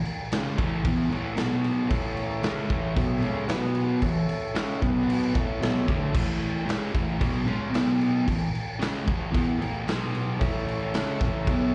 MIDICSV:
0, 0, Header, 1, 4, 480
1, 0, Start_track
1, 0, Key_signature, 3, "major"
1, 0, Tempo, 530973
1, 1715, Time_signature, 4, 2, 24, 8
1, 10620, End_track
2, 0, Start_track
2, 0, Title_t, "Transistor combo organ"
2, 0, Program_c, 0, 18
2, 1709, Note_on_c, 0, 69, 69
2, 1711, Note_on_c, 0, 73, 68
2, 1717, Note_on_c, 0, 76, 81
2, 3120, Note_off_c, 0, 69, 0
2, 3121, Note_off_c, 0, 73, 0
2, 3124, Note_off_c, 0, 76, 0
2, 3136, Note_on_c, 0, 66, 83
2, 3144, Note_on_c, 0, 78, 91
2, 3147, Note_on_c, 0, 71, 82
2, 3624, Note_off_c, 0, 66, 0
2, 3627, Note_off_c, 0, 78, 0
2, 3629, Note_off_c, 0, 71, 0
2, 3638, Note_on_c, 0, 69, 75
2, 3638, Note_on_c, 0, 73, 67
2, 3644, Note_on_c, 0, 76, 86
2, 4343, Note_on_c, 0, 66, 78
2, 4350, Note_on_c, 0, 71, 67
2, 4355, Note_off_c, 0, 69, 0
2, 4355, Note_off_c, 0, 73, 0
2, 4357, Note_on_c, 0, 78, 79
2, 4358, Note_off_c, 0, 76, 0
2, 4828, Note_off_c, 0, 66, 0
2, 4831, Note_off_c, 0, 71, 0
2, 4835, Note_off_c, 0, 78, 0
2, 4847, Note_on_c, 0, 69, 83
2, 4849, Note_on_c, 0, 76, 84
2, 4853, Note_on_c, 0, 73, 81
2, 5561, Note_off_c, 0, 69, 0
2, 5562, Note_off_c, 0, 76, 0
2, 5564, Note_off_c, 0, 73, 0
2, 9391, Note_on_c, 0, 69, 78
2, 9394, Note_on_c, 0, 73, 70
2, 9408, Note_on_c, 0, 76, 88
2, 10620, Note_off_c, 0, 69, 0
2, 10620, Note_off_c, 0, 73, 0
2, 10620, Note_off_c, 0, 76, 0
2, 10620, End_track
3, 0, Start_track
3, 0, Title_t, "Distorted electric guitar"
3, 0, Program_c, 1, 30
3, 293, Note_on_c, 1, 49, 100
3, 297, Note_on_c, 1, 56, 105
3, 299, Note_on_c, 1, 61, 92
3, 515, Note_off_c, 1, 49, 0
3, 518, Note_on_c, 1, 45, 88
3, 521, Note_off_c, 1, 56, 0
3, 522, Note_off_c, 1, 61, 0
3, 525, Note_on_c, 1, 52, 90
3, 528, Note_on_c, 1, 57, 92
3, 751, Note_off_c, 1, 45, 0
3, 754, Note_off_c, 1, 52, 0
3, 756, Note_off_c, 1, 57, 0
3, 768, Note_on_c, 1, 52, 89
3, 775, Note_on_c, 1, 59, 91
3, 778, Note_on_c, 1, 64, 108
3, 992, Note_off_c, 1, 52, 0
3, 995, Note_on_c, 1, 45, 97
3, 999, Note_off_c, 1, 59, 0
3, 1000, Note_off_c, 1, 64, 0
3, 1008, Note_on_c, 1, 52, 85
3, 1014, Note_on_c, 1, 57, 109
3, 1228, Note_off_c, 1, 45, 0
3, 1235, Note_off_c, 1, 52, 0
3, 1235, Note_on_c, 1, 47, 92
3, 1238, Note_off_c, 1, 57, 0
3, 1240, Note_on_c, 1, 54, 103
3, 1247, Note_on_c, 1, 59, 98
3, 1707, Note_off_c, 1, 47, 0
3, 1710, Note_off_c, 1, 54, 0
3, 1713, Note_off_c, 1, 59, 0
3, 1718, Note_on_c, 1, 45, 105
3, 1723, Note_on_c, 1, 52, 112
3, 1736, Note_on_c, 1, 57, 117
3, 2188, Note_off_c, 1, 45, 0
3, 2191, Note_off_c, 1, 52, 0
3, 2193, Note_on_c, 1, 49, 88
3, 2196, Note_on_c, 1, 56, 96
3, 2197, Note_off_c, 1, 57, 0
3, 2201, Note_on_c, 1, 61, 106
3, 2418, Note_off_c, 1, 49, 0
3, 2422, Note_on_c, 1, 45, 86
3, 2427, Note_off_c, 1, 56, 0
3, 2430, Note_off_c, 1, 61, 0
3, 2434, Note_on_c, 1, 52, 90
3, 2445, Note_on_c, 1, 57, 94
3, 2660, Note_off_c, 1, 45, 0
3, 2666, Note_off_c, 1, 52, 0
3, 2671, Note_off_c, 1, 57, 0
3, 2676, Note_on_c, 1, 47, 101
3, 2688, Note_on_c, 1, 54, 94
3, 2689, Note_on_c, 1, 59, 109
3, 2907, Note_off_c, 1, 47, 0
3, 2913, Note_off_c, 1, 54, 0
3, 2913, Note_off_c, 1, 59, 0
3, 2913, Note_on_c, 1, 49, 87
3, 2924, Note_on_c, 1, 56, 95
3, 2931, Note_on_c, 1, 61, 91
3, 3145, Note_off_c, 1, 49, 0
3, 3151, Note_off_c, 1, 56, 0
3, 3154, Note_off_c, 1, 61, 0
3, 3154, Note_on_c, 1, 47, 89
3, 3162, Note_on_c, 1, 54, 84
3, 3165, Note_on_c, 1, 59, 108
3, 3625, Note_off_c, 1, 47, 0
3, 3629, Note_off_c, 1, 54, 0
3, 3631, Note_off_c, 1, 59, 0
3, 3636, Note_on_c, 1, 52, 84
3, 3638, Note_on_c, 1, 45, 64
3, 3826, Note_off_c, 1, 52, 0
3, 3827, Note_off_c, 1, 45, 0
3, 4106, Note_on_c, 1, 49, 86
3, 4109, Note_on_c, 1, 56, 98
3, 4122, Note_on_c, 1, 61, 100
3, 4341, Note_off_c, 1, 49, 0
3, 4343, Note_off_c, 1, 56, 0
3, 4350, Note_off_c, 1, 61, 0
3, 4356, Note_on_c, 1, 47, 78
3, 4362, Note_on_c, 1, 54, 99
3, 4366, Note_on_c, 1, 59, 97
3, 4821, Note_off_c, 1, 47, 0
3, 4825, Note_on_c, 1, 45, 92
3, 4830, Note_off_c, 1, 54, 0
3, 4832, Note_off_c, 1, 59, 0
3, 4836, Note_on_c, 1, 52, 104
3, 4841, Note_on_c, 1, 57, 111
3, 5061, Note_off_c, 1, 45, 0
3, 5065, Note_on_c, 1, 47, 89
3, 5067, Note_off_c, 1, 52, 0
3, 5070, Note_off_c, 1, 57, 0
3, 5079, Note_on_c, 1, 54, 94
3, 5079, Note_on_c, 1, 59, 106
3, 5295, Note_off_c, 1, 47, 0
3, 5298, Note_on_c, 1, 50, 84
3, 5302, Note_off_c, 1, 54, 0
3, 5306, Note_on_c, 1, 57, 92
3, 5309, Note_off_c, 1, 59, 0
3, 5312, Note_on_c, 1, 62, 89
3, 5530, Note_off_c, 1, 57, 0
3, 5533, Note_on_c, 1, 52, 107
3, 5534, Note_off_c, 1, 50, 0
3, 5537, Note_on_c, 1, 45, 104
3, 5541, Note_off_c, 1, 62, 0
3, 5545, Note_on_c, 1, 57, 115
3, 6017, Note_off_c, 1, 52, 0
3, 6018, Note_off_c, 1, 45, 0
3, 6021, Note_on_c, 1, 49, 90
3, 6021, Note_on_c, 1, 56, 93
3, 6022, Note_off_c, 1, 57, 0
3, 6027, Note_on_c, 1, 61, 100
3, 6251, Note_off_c, 1, 49, 0
3, 6255, Note_on_c, 1, 45, 77
3, 6260, Note_off_c, 1, 56, 0
3, 6264, Note_off_c, 1, 61, 0
3, 6272, Note_on_c, 1, 52, 101
3, 6275, Note_on_c, 1, 57, 91
3, 6498, Note_off_c, 1, 45, 0
3, 6500, Note_off_c, 1, 52, 0
3, 6504, Note_on_c, 1, 54, 92
3, 6505, Note_on_c, 1, 47, 77
3, 6508, Note_off_c, 1, 57, 0
3, 6515, Note_on_c, 1, 59, 94
3, 6743, Note_off_c, 1, 47, 0
3, 6743, Note_off_c, 1, 54, 0
3, 6748, Note_off_c, 1, 59, 0
3, 6748, Note_on_c, 1, 49, 87
3, 6754, Note_on_c, 1, 56, 90
3, 6756, Note_on_c, 1, 61, 98
3, 6976, Note_off_c, 1, 49, 0
3, 6976, Note_off_c, 1, 56, 0
3, 6976, Note_on_c, 1, 47, 88
3, 6976, Note_on_c, 1, 54, 102
3, 6984, Note_off_c, 1, 61, 0
3, 6984, Note_on_c, 1, 59, 99
3, 7459, Note_off_c, 1, 47, 0
3, 7459, Note_off_c, 1, 54, 0
3, 7464, Note_off_c, 1, 59, 0
3, 7464, Note_on_c, 1, 45, 75
3, 7470, Note_on_c, 1, 52, 82
3, 7663, Note_off_c, 1, 45, 0
3, 7666, Note_off_c, 1, 52, 0
3, 7951, Note_on_c, 1, 49, 93
3, 7956, Note_on_c, 1, 56, 105
3, 7964, Note_on_c, 1, 61, 111
3, 8179, Note_off_c, 1, 49, 0
3, 8182, Note_on_c, 1, 45, 88
3, 8188, Note_off_c, 1, 56, 0
3, 8191, Note_on_c, 1, 52, 88
3, 8194, Note_off_c, 1, 61, 0
3, 8198, Note_on_c, 1, 57, 97
3, 8410, Note_off_c, 1, 52, 0
3, 8417, Note_off_c, 1, 45, 0
3, 8421, Note_on_c, 1, 52, 90
3, 8429, Note_on_c, 1, 59, 103
3, 8430, Note_off_c, 1, 57, 0
3, 8434, Note_on_c, 1, 64, 105
3, 8662, Note_off_c, 1, 52, 0
3, 8666, Note_off_c, 1, 59, 0
3, 8669, Note_off_c, 1, 64, 0
3, 8674, Note_on_c, 1, 45, 96
3, 8684, Note_on_c, 1, 52, 111
3, 8694, Note_on_c, 1, 57, 101
3, 8909, Note_off_c, 1, 45, 0
3, 8914, Note_off_c, 1, 52, 0
3, 8919, Note_off_c, 1, 57, 0
3, 8921, Note_on_c, 1, 47, 83
3, 8928, Note_on_c, 1, 54, 100
3, 8934, Note_on_c, 1, 59, 97
3, 9390, Note_off_c, 1, 47, 0
3, 9393, Note_on_c, 1, 45, 112
3, 9396, Note_off_c, 1, 54, 0
3, 9398, Note_off_c, 1, 59, 0
3, 9400, Note_on_c, 1, 52, 107
3, 9402, Note_on_c, 1, 57, 115
3, 9869, Note_off_c, 1, 45, 0
3, 9872, Note_off_c, 1, 52, 0
3, 9873, Note_off_c, 1, 57, 0
3, 9897, Note_on_c, 1, 49, 101
3, 9900, Note_on_c, 1, 56, 87
3, 9908, Note_on_c, 1, 61, 105
3, 10121, Note_off_c, 1, 49, 0
3, 10122, Note_off_c, 1, 56, 0
3, 10126, Note_off_c, 1, 61, 0
3, 10139, Note_on_c, 1, 45, 86
3, 10145, Note_on_c, 1, 52, 92
3, 10150, Note_on_c, 1, 57, 103
3, 10361, Note_off_c, 1, 45, 0
3, 10364, Note_off_c, 1, 52, 0
3, 10367, Note_off_c, 1, 57, 0
3, 10371, Note_on_c, 1, 47, 84
3, 10374, Note_on_c, 1, 54, 102
3, 10386, Note_on_c, 1, 59, 113
3, 10597, Note_off_c, 1, 47, 0
3, 10599, Note_off_c, 1, 54, 0
3, 10605, Note_off_c, 1, 59, 0
3, 10620, End_track
4, 0, Start_track
4, 0, Title_t, "Drums"
4, 46, Note_on_c, 9, 49, 74
4, 136, Note_off_c, 9, 49, 0
4, 286, Note_on_c, 9, 49, 83
4, 296, Note_on_c, 9, 38, 123
4, 376, Note_off_c, 9, 49, 0
4, 386, Note_off_c, 9, 38, 0
4, 528, Note_on_c, 9, 36, 104
4, 534, Note_on_c, 9, 49, 67
4, 618, Note_off_c, 9, 36, 0
4, 624, Note_off_c, 9, 49, 0
4, 767, Note_on_c, 9, 36, 113
4, 767, Note_on_c, 9, 49, 82
4, 857, Note_off_c, 9, 36, 0
4, 858, Note_off_c, 9, 49, 0
4, 1014, Note_on_c, 9, 49, 59
4, 1104, Note_off_c, 9, 49, 0
4, 1237, Note_on_c, 9, 49, 75
4, 1247, Note_on_c, 9, 38, 114
4, 1328, Note_off_c, 9, 49, 0
4, 1338, Note_off_c, 9, 38, 0
4, 1484, Note_on_c, 9, 49, 65
4, 1575, Note_off_c, 9, 49, 0
4, 1722, Note_on_c, 9, 49, 88
4, 1723, Note_on_c, 9, 36, 110
4, 1813, Note_off_c, 9, 49, 0
4, 1814, Note_off_c, 9, 36, 0
4, 1961, Note_on_c, 9, 49, 62
4, 2051, Note_off_c, 9, 49, 0
4, 2198, Note_on_c, 9, 49, 82
4, 2208, Note_on_c, 9, 38, 114
4, 2288, Note_off_c, 9, 49, 0
4, 2298, Note_off_c, 9, 38, 0
4, 2438, Note_on_c, 9, 49, 66
4, 2442, Note_on_c, 9, 36, 106
4, 2528, Note_off_c, 9, 49, 0
4, 2532, Note_off_c, 9, 36, 0
4, 2678, Note_on_c, 9, 49, 89
4, 2681, Note_on_c, 9, 36, 112
4, 2768, Note_off_c, 9, 49, 0
4, 2771, Note_off_c, 9, 36, 0
4, 2915, Note_on_c, 9, 49, 61
4, 3005, Note_off_c, 9, 49, 0
4, 3151, Note_on_c, 9, 49, 80
4, 3161, Note_on_c, 9, 38, 117
4, 3242, Note_off_c, 9, 49, 0
4, 3252, Note_off_c, 9, 38, 0
4, 3388, Note_on_c, 9, 49, 70
4, 3478, Note_off_c, 9, 49, 0
4, 3630, Note_on_c, 9, 49, 94
4, 3634, Note_on_c, 9, 36, 92
4, 3720, Note_off_c, 9, 49, 0
4, 3725, Note_off_c, 9, 36, 0
4, 3875, Note_on_c, 9, 49, 70
4, 3966, Note_off_c, 9, 49, 0
4, 4114, Note_on_c, 9, 49, 89
4, 4124, Note_on_c, 9, 38, 117
4, 4205, Note_off_c, 9, 49, 0
4, 4214, Note_off_c, 9, 38, 0
4, 4358, Note_on_c, 9, 36, 107
4, 4361, Note_on_c, 9, 49, 75
4, 4371, Note_on_c, 9, 38, 36
4, 4449, Note_off_c, 9, 36, 0
4, 4451, Note_off_c, 9, 49, 0
4, 4461, Note_off_c, 9, 38, 0
4, 4607, Note_on_c, 9, 49, 94
4, 4697, Note_off_c, 9, 49, 0
4, 4838, Note_on_c, 9, 36, 114
4, 4848, Note_on_c, 9, 49, 64
4, 4928, Note_off_c, 9, 36, 0
4, 4938, Note_off_c, 9, 49, 0
4, 5084, Note_on_c, 9, 49, 78
4, 5094, Note_on_c, 9, 38, 116
4, 5174, Note_off_c, 9, 49, 0
4, 5184, Note_off_c, 9, 38, 0
4, 5319, Note_on_c, 9, 36, 103
4, 5327, Note_on_c, 9, 49, 64
4, 5409, Note_off_c, 9, 36, 0
4, 5417, Note_off_c, 9, 49, 0
4, 5557, Note_on_c, 9, 36, 124
4, 5560, Note_on_c, 9, 49, 91
4, 5560, Note_on_c, 9, 57, 121
4, 5647, Note_off_c, 9, 36, 0
4, 5650, Note_off_c, 9, 49, 0
4, 5650, Note_off_c, 9, 57, 0
4, 5804, Note_on_c, 9, 49, 62
4, 5895, Note_off_c, 9, 49, 0
4, 6048, Note_on_c, 9, 49, 88
4, 6058, Note_on_c, 9, 38, 116
4, 6138, Note_off_c, 9, 49, 0
4, 6148, Note_off_c, 9, 38, 0
4, 6280, Note_on_c, 9, 36, 109
4, 6288, Note_on_c, 9, 49, 63
4, 6370, Note_off_c, 9, 36, 0
4, 6379, Note_off_c, 9, 49, 0
4, 6518, Note_on_c, 9, 36, 108
4, 6523, Note_on_c, 9, 49, 91
4, 6608, Note_off_c, 9, 36, 0
4, 6614, Note_off_c, 9, 49, 0
4, 6757, Note_on_c, 9, 49, 55
4, 6847, Note_off_c, 9, 49, 0
4, 6999, Note_on_c, 9, 49, 87
4, 7008, Note_on_c, 9, 38, 104
4, 7089, Note_off_c, 9, 49, 0
4, 7099, Note_off_c, 9, 38, 0
4, 7243, Note_on_c, 9, 49, 70
4, 7333, Note_off_c, 9, 49, 0
4, 7484, Note_on_c, 9, 36, 88
4, 7487, Note_on_c, 9, 49, 95
4, 7575, Note_off_c, 9, 36, 0
4, 7577, Note_off_c, 9, 49, 0
4, 7731, Note_on_c, 9, 49, 70
4, 7821, Note_off_c, 9, 49, 0
4, 7970, Note_on_c, 9, 49, 94
4, 7980, Note_on_c, 9, 38, 115
4, 8061, Note_off_c, 9, 49, 0
4, 8070, Note_off_c, 9, 38, 0
4, 8206, Note_on_c, 9, 36, 107
4, 8208, Note_on_c, 9, 49, 64
4, 8297, Note_off_c, 9, 36, 0
4, 8299, Note_off_c, 9, 49, 0
4, 8448, Note_on_c, 9, 36, 109
4, 8448, Note_on_c, 9, 49, 94
4, 8538, Note_off_c, 9, 36, 0
4, 8539, Note_off_c, 9, 49, 0
4, 8695, Note_on_c, 9, 49, 65
4, 8786, Note_off_c, 9, 49, 0
4, 8930, Note_on_c, 9, 49, 79
4, 8940, Note_on_c, 9, 38, 111
4, 9021, Note_off_c, 9, 49, 0
4, 9031, Note_off_c, 9, 38, 0
4, 9173, Note_on_c, 9, 49, 62
4, 9263, Note_off_c, 9, 49, 0
4, 9410, Note_on_c, 9, 36, 110
4, 9419, Note_on_c, 9, 49, 84
4, 9500, Note_off_c, 9, 36, 0
4, 9510, Note_off_c, 9, 49, 0
4, 9658, Note_on_c, 9, 49, 59
4, 9749, Note_off_c, 9, 49, 0
4, 9888, Note_on_c, 9, 49, 88
4, 9898, Note_on_c, 9, 38, 109
4, 9979, Note_off_c, 9, 49, 0
4, 9989, Note_off_c, 9, 38, 0
4, 10132, Note_on_c, 9, 36, 111
4, 10136, Note_on_c, 9, 49, 61
4, 10146, Note_on_c, 9, 38, 37
4, 10222, Note_off_c, 9, 36, 0
4, 10226, Note_off_c, 9, 49, 0
4, 10236, Note_off_c, 9, 38, 0
4, 10370, Note_on_c, 9, 36, 110
4, 10373, Note_on_c, 9, 49, 82
4, 10461, Note_off_c, 9, 36, 0
4, 10464, Note_off_c, 9, 49, 0
4, 10620, End_track
0, 0, End_of_file